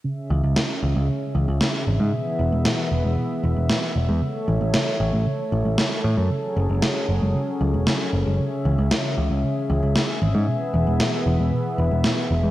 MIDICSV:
0, 0, Header, 1, 5, 480
1, 0, Start_track
1, 0, Key_signature, 4, "minor"
1, 0, Tempo, 521739
1, 40, Time_signature, 4, 2, 24, 8
1, 11506, End_track
2, 0, Start_track
2, 0, Title_t, "Analog synth pad"
2, 0, Program_c, 0, 89
2, 39, Note_on_c, 0, 49, 77
2, 39, Note_on_c, 0, 61, 76
2, 39, Note_on_c, 0, 68, 73
2, 40, Note_on_c, 0, 76, 86
2, 1940, Note_off_c, 0, 49, 0
2, 1940, Note_off_c, 0, 61, 0
2, 1959, Note_on_c, 0, 52, 83
2, 1959, Note_on_c, 0, 59, 73
2, 3842, Note_off_c, 0, 68, 0
2, 3860, Note_off_c, 0, 52, 0
2, 3860, Note_off_c, 0, 59, 0
2, 3879, Note_on_c, 0, 57, 83
2, 3879, Note_on_c, 0, 73, 75
2, 3880, Note_on_c, 0, 69, 74
2, 5763, Note_off_c, 0, 76, 0
2, 5780, Note_off_c, 0, 57, 0
2, 5780, Note_off_c, 0, 73, 0
2, 5798, Note_on_c, 0, 68, 71
2, 5799, Note_on_c, 0, 54, 78
2, 5799, Note_on_c, 0, 61, 76
2, 7683, Note_off_c, 0, 69, 0
2, 7700, Note_off_c, 0, 54, 0
2, 7700, Note_off_c, 0, 68, 0
2, 7718, Note_on_c, 0, 49, 81
2, 7718, Note_on_c, 0, 68, 76
2, 7718, Note_on_c, 0, 76, 84
2, 9602, Note_off_c, 0, 61, 0
2, 9619, Note_off_c, 0, 49, 0
2, 9638, Note_on_c, 0, 52, 80
2, 9638, Note_on_c, 0, 59, 73
2, 11506, Note_off_c, 0, 52, 0
2, 11506, Note_off_c, 0, 59, 0
2, 11506, Note_off_c, 0, 68, 0
2, 11506, Note_off_c, 0, 76, 0
2, 11506, End_track
3, 0, Start_track
3, 0, Title_t, "Synth arpeggio sound"
3, 0, Program_c, 1, 84
3, 39, Note_on_c, 1, 49, 82
3, 117, Note_off_c, 1, 49, 0
3, 279, Note_on_c, 1, 52, 72
3, 357, Note_off_c, 1, 52, 0
3, 399, Note_on_c, 1, 56, 67
3, 477, Note_off_c, 1, 56, 0
3, 519, Note_on_c, 1, 49, 81
3, 597, Note_off_c, 1, 49, 0
3, 760, Note_on_c, 1, 52, 72
3, 873, Note_off_c, 1, 52, 0
3, 880, Note_on_c, 1, 56, 95
3, 957, Note_off_c, 1, 56, 0
3, 1000, Note_on_c, 1, 49, 76
3, 1077, Note_off_c, 1, 49, 0
3, 1239, Note_on_c, 1, 52, 74
3, 1317, Note_off_c, 1, 52, 0
3, 1359, Note_on_c, 1, 56, 67
3, 1437, Note_off_c, 1, 56, 0
3, 1479, Note_on_c, 1, 49, 78
3, 1557, Note_off_c, 1, 49, 0
3, 1720, Note_on_c, 1, 52, 70
3, 1833, Note_off_c, 1, 52, 0
3, 1839, Note_on_c, 1, 56, 95
3, 1917, Note_off_c, 1, 56, 0
3, 1960, Note_on_c, 1, 47, 78
3, 2037, Note_off_c, 1, 47, 0
3, 2199, Note_on_c, 1, 52, 75
3, 2277, Note_off_c, 1, 52, 0
3, 2319, Note_on_c, 1, 56, 72
3, 2397, Note_off_c, 1, 56, 0
3, 2439, Note_on_c, 1, 47, 80
3, 2517, Note_off_c, 1, 47, 0
3, 2679, Note_on_c, 1, 52, 73
3, 2793, Note_off_c, 1, 52, 0
3, 2799, Note_on_c, 1, 56, 94
3, 2877, Note_off_c, 1, 56, 0
3, 2919, Note_on_c, 1, 47, 78
3, 2997, Note_off_c, 1, 47, 0
3, 3159, Note_on_c, 1, 52, 73
3, 3237, Note_off_c, 1, 52, 0
3, 3280, Note_on_c, 1, 56, 67
3, 3357, Note_off_c, 1, 56, 0
3, 3400, Note_on_c, 1, 47, 78
3, 3477, Note_off_c, 1, 47, 0
3, 3640, Note_on_c, 1, 52, 74
3, 3753, Note_off_c, 1, 52, 0
3, 3760, Note_on_c, 1, 56, 92
3, 3837, Note_off_c, 1, 56, 0
3, 3879, Note_on_c, 1, 49, 79
3, 3957, Note_off_c, 1, 49, 0
3, 4119, Note_on_c, 1, 52, 78
3, 4197, Note_off_c, 1, 52, 0
3, 4239, Note_on_c, 1, 57, 70
3, 4317, Note_off_c, 1, 57, 0
3, 4359, Note_on_c, 1, 49, 81
3, 4437, Note_off_c, 1, 49, 0
3, 4599, Note_on_c, 1, 52, 71
3, 4713, Note_off_c, 1, 52, 0
3, 4718, Note_on_c, 1, 57, 96
3, 4796, Note_off_c, 1, 57, 0
3, 4838, Note_on_c, 1, 49, 80
3, 4916, Note_off_c, 1, 49, 0
3, 5078, Note_on_c, 1, 52, 70
3, 5156, Note_off_c, 1, 52, 0
3, 5198, Note_on_c, 1, 57, 67
3, 5276, Note_off_c, 1, 57, 0
3, 5318, Note_on_c, 1, 49, 82
3, 5396, Note_off_c, 1, 49, 0
3, 5558, Note_on_c, 1, 52, 72
3, 5673, Note_off_c, 1, 52, 0
3, 5679, Note_on_c, 1, 57, 91
3, 5757, Note_off_c, 1, 57, 0
3, 5798, Note_on_c, 1, 49, 78
3, 5876, Note_off_c, 1, 49, 0
3, 6038, Note_on_c, 1, 54, 74
3, 6116, Note_off_c, 1, 54, 0
3, 6159, Note_on_c, 1, 56, 68
3, 6236, Note_off_c, 1, 56, 0
3, 6278, Note_on_c, 1, 49, 79
3, 6356, Note_off_c, 1, 49, 0
3, 6519, Note_on_c, 1, 54, 74
3, 6633, Note_off_c, 1, 54, 0
3, 6639, Note_on_c, 1, 56, 98
3, 6717, Note_off_c, 1, 56, 0
3, 6760, Note_on_c, 1, 49, 85
3, 6837, Note_off_c, 1, 49, 0
3, 6999, Note_on_c, 1, 54, 74
3, 7077, Note_off_c, 1, 54, 0
3, 7120, Note_on_c, 1, 56, 68
3, 7197, Note_off_c, 1, 56, 0
3, 7240, Note_on_c, 1, 49, 82
3, 7317, Note_off_c, 1, 49, 0
3, 7480, Note_on_c, 1, 54, 71
3, 7593, Note_off_c, 1, 54, 0
3, 7599, Note_on_c, 1, 56, 94
3, 7677, Note_off_c, 1, 56, 0
3, 7720, Note_on_c, 1, 49, 80
3, 7797, Note_off_c, 1, 49, 0
3, 7960, Note_on_c, 1, 52, 73
3, 8037, Note_off_c, 1, 52, 0
3, 8079, Note_on_c, 1, 56, 73
3, 8157, Note_off_c, 1, 56, 0
3, 8199, Note_on_c, 1, 49, 81
3, 8277, Note_off_c, 1, 49, 0
3, 8439, Note_on_c, 1, 52, 70
3, 8553, Note_off_c, 1, 52, 0
3, 8559, Note_on_c, 1, 56, 101
3, 8637, Note_off_c, 1, 56, 0
3, 8679, Note_on_c, 1, 49, 81
3, 8757, Note_off_c, 1, 49, 0
3, 8919, Note_on_c, 1, 52, 70
3, 8997, Note_off_c, 1, 52, 0
3, 9039, Note_on_c, 1, 56, 71
3, 9116, Note_off_c, 1, 56, 0
3, 9158, Note_on_c, 1, 49, 81
3, 9236, Note_off_c, 1, 49, 0
3, 9399, Note_on_c, 1, 52, 74
3, 9513, Note_off_c, 1, 52, 0
3, 9519, Note_on_c, 1, 56, 100
3, 9597, Note_off_c, 1, 56, 0
3, 9639, Note_on_c, 1, 47, 82
3, 9717, Note_off_c, 1, 47, 0
3, 9879, Note_on_c, 1, 52, 71
3, 9956, Note_off_c, 1, 52, 0
3, 9999, Note_on_c, 1, 56, 70
3, 10076, Note_off_c, 1, 56, 0
3, 10119, Note_on_c, 1, 47, 79
3, 10197, Note_off_c, 1, 47, 0
3, 10360, Note_on_c, 1, 52, 73
3, 10473, Note_off_c, 1, 52, 0
3, 10480, Note_on_c, 1, 56, 95
3, 10557, Note_off_c, 1, 56, 0
3, 10600, Note_on_c, 1, 47, 84
3, 10677, Note_off_c, 1, 47, 0
3, 10840, Note_on_c, 1, 52, 72
3, 10917, Note_off_c, 1, 52, 0
3, 10959, Note_on_c, 1, 56, 69
3, 11037, Note_off_c, 1, 56, 0
3, 11080, Note_on_c, 1, 47, 84
3, 11157, Note_off_c, 1, 47, 0
3, 11319, Note_on_c, 1, 52, 73
3, 11433, Note_off_c, 1, 52, 0
3, 11439, Note_on_c, 1, 56, 91
3, 11506, Note_off_c, 1, 56, 0
3, 11506, End_track
4, 0, Start_track
4, 0, Title_t, "Picked electric bass"
4, 0, Program_c, 2, 34
4, 279, Note_on_c, 2, 37, 83
4, 383, Note_off_c, 2, 37, 0
4, 400, Note_on_c, 2, 37, 74
4, 503, Note_off_c, 2, 37, 0
4, 760, Note_on_c, 2, 37, 88
4, 864, Note_off_c, 2, 37, 0
4, 880, Note_on_c, 2, 37, 74
4, 984, Note_off_c, 2, 37, 0
4, 1240, Note_on_c, 2, 37, 82
4, 1344, Note_off_c, 2, 37, 0
4, 1361, Note_on_c, 2, 37, 74
4, 1464, Note_off_c, 2, 37, 0
4, 1720, Note_on_c, 2, 32, 93
4, 1824, Note_off_c, 2, 32, 0
4, 1840, Note_on_c, 2, 44, 78
4, 1944, Note_off_c, 2, 44, 0
4, 2200, Note_on_c, 2, 28, 81
4, 2303, Note_off_c, 2, 28, 0
4, 2319, Note_on_c, 2, 28, 78
4, 2423, Note_off_c, 2, 28, 0
4, 2678, Note_on_c, 2, 28, 83
4, 2783, Note_off_c, 2, 28, 0
4, 2799, Note_on_c, 2, 28, 73
4, 2903, Note_off_c, 2, 28, 0
4, 3159, Note_on_c, 2, 28, 82
4, 3263, Note_off_c, 2, 28, 0
4, 3279, Note_on_c, 2, 28, 71
4, 3383, Note_off_c, 2, 28, 0
4, 3639, Note_on_c, 2, 28, 91
4, 3743, Note_off_c, 2, 28, 0
4, 3760, Note_on_c, 2, 40, 79
4, 3864, Note_off_c, 2, 40, 0
4, 4119, Note_on_c, 2, 33, 84
4, 4223, Note_off_c, 2, 33, 0
4, 4239, Note_on_c, 2, 33, 78
4, 4343, Note_off_c, 2, 33, 0
4, 4600, Note_on_c, 2, 33, 90
4, 4704, Note_off_c, 2, 33, 0
4, 4721, Note_on_c, 2, 33, 77
4, 4824, Note_off_c, 2, 33, 0
4, 5079, Note_on_c, 2, 33, 84
4, 5183, Note_off_c, 2, 33, 0
4, 5199, Note_on_c, 2, 33, 74
4, 5303, Note_off_c, 2, 33, 0
4, 5559, Note_on_c, 2, 45, 91
4, 5663, Note_off_c, 2, 45, 0
4, 5680, Note_on_c, 2, 42, 81
4, 5784, Note_off_c, 2, 42, 0
4, 6040, Note_on_c, 2, 30, 87
4, 6143, Note_off_c, 2, 30, 0
4, 6159, Note_on_c, 2, 30, 76
4, 6263, Note_off_c, 2, 30, 0
4, 6518, Note_on_c, 2, 30, 88
4, 6623, Note_off_c, 2, 30, 0
4, 6639, Note_on_c, 2, 30, 75
4, 6743, Note_off_c, 2, 30, 0
4, 6998, Note_on_c, 2, 37, 81
4, 7102, Note_off_c, 2, 37, 0
4, 7119, Note_on_c, 2, 28, 74
4, 7223, Note_off_c, 2, 28, 0
4, 7479, Note_on_c, 2, 30, 91
4, 7583, Note_off_c, 2, 30, 0
4, 7600, Note_on_c, 2, 30, 77
4, 7703, Note_off_c, 2, 30, 0
4, 7960, Note_on_c, 2, 37, 83
4, 8063, Note_off_c, 2, 37, 0
4, 8079, Note_on_c, 2, 37, 79
4, 8183, Note_off_c, 2, 37, 0
4, 8440, Note_on_c, 2, 37, 83
4, 8544, Note_off_c, 2, 37, 0
4, 8561, Note_on_c, 2, 37, 70
4, 8664, Note_off_c, 2, 37, 0
4, 8921, Note_on_c, 2, 37, 84
4, 9024, Note_off_c, 2, 37, 0
4, 9040, Note_on_c, 2, 37, 76
4, 9144, Note_off_c, 2, 37, 0
4, 9400, Note_on_c, 2, 32, 93
4, 9503, Note_off_c, 2, 32, 0
4, 9520, Note_on_c, 2, 44, 78
4, 9623, Note_off_c, 2, 44, 0
4, 9878, Note_on_c, 2, 28, 82
4, 9983, Note_off_c, 2, 28, 0
4, 9999, Note_on_c, 2, 28, 80
4, 10103, Note_off_c, 2, 28, 0
4, 10359, Note_on_c, 2, 28, 89
4, 10463, Note_off_c, 2, 28, 0
4, 10479, Note_on_c, 2, 28, 73
4, 10583, Note_off_c, 2, 28, 0
4, 10839, Note_on_c, 2, 28, 82
4, 10943, Note_off_c, 2, 28, 0
4, 10960, Note_on_c, 2, 28, 77
4, 11064, Note_off_c, 2, 28, 0
4, 11319, Note_on_c, 2, 28, 93
4, 11423, Note_off_c, 2, 28, 0
4, 11439, Note_on_c, 2, 40, 76
4, 11506, Note_off_c, 2, 40, 0
4, 11506, End_track
5, 0, Start_track
5, 0, Title_t, "Drums"
5, 519, Note_on_c, 9, 38, 110
5, 611, Note_off_c, 9, 38, 0
5, 1479, Note_on_c, 9, 38, 110
5, 1571, Note_off_c, 9, 38, 0
5, 2439, Note_on_c, 9, 38, 113
5, 2531, Note_off_c, 9, 38, 0
5, 3399, Note_on_c, 9, 38, 110
5, 3491, Note_off_c, 9, 38, 0
5, 4359, Note_on_c, 9, 38, 120
5, 4451, Note_off_c, 9, 38, 0
5, 5319, Note_on_c, 9, 38, 123
5, 5411, Note_off_c, 9, 38, 0
5, 6279, Note_on_c, 9, 38, 110
5, 6371, Note_off_c, 9, 38, 0
5, 7239, Note_on_c, 9, 38, 114
5, 7331, Note_off_c, 9, 38, 0
5, 8199, Note_on_c, 9, 38, 113
5, 8291, Note_off_c, 9, 38, 0
5, 9160, Note_on_c, 9, 38, 108
5, 9252, Note_off_c, 9, 38, 0
5, 10120, Note_on_c, 9, 38, 107
5, 10212, Note_off_c, 9, 38, 0
5, 11079, Note_on_c, 9, 38, 105
5, 11171, Note_off_c, 9, 38, 0
5, 11506, End_track
0, 0, End_of_file